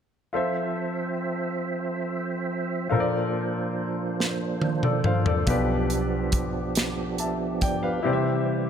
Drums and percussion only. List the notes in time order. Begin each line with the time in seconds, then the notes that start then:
4.20 snare
4.62 high tom
4.83 mid tom
5.04 mid tom
5.26 floor tom
5.47 kick, closed hi-hat
5.90 closed hi-hat
6.32 kick, closed hi-hat
6.75 snare, closed hi-hat
7.18 closed hi-hat
7.61 kick, closed hi-hat